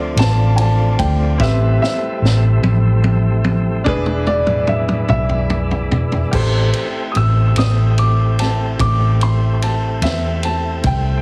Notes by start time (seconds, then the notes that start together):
Already playing: D2 F3 A3 C4 D4 E4 F4 C5
0.16 A1 A5, snare, ride
0.56 G#5, ride
0.61 A5
0.99 D2 G5, kick, ride
1.38 A1 G3 A3 C4 E4 G4 B4 E5, kick
1.42 snare
1.82 E5, snare
2.22 A1, snare
2.62 A1, high tom
3.04 high tom
3.44 high tom
3.84 E1 G#3 D4 E4 G#4 B4, kick, mid tom
3.89 B3 D4
4.06 mid tom
4.27 D5, mid tom
4.47 mid tom
4.67 E5, mid tom
4.89 mid tom
5.08 B1 E5, mid tom
5.29 floor tom
5.50 floor tom
5.71 floor tom
5.91 E1, floor tom
6.12 floor tom
6.31 A1 A3 C4 E4 G4 A4 C5, kick, crash
6.73 ride
7.12 A1 D#6, ride
7.17 E6
7.56 A1 D#6, snare, ride
7.98 D6, ride
8.39 A5, snare, ride
8.79 A1 D6, kick, ride
9.21 C6, ride
9.62 A5, ride
10.02 E2 E5, snare, ride
10.43 A5, ride
10.83 C2 G5, kick, ride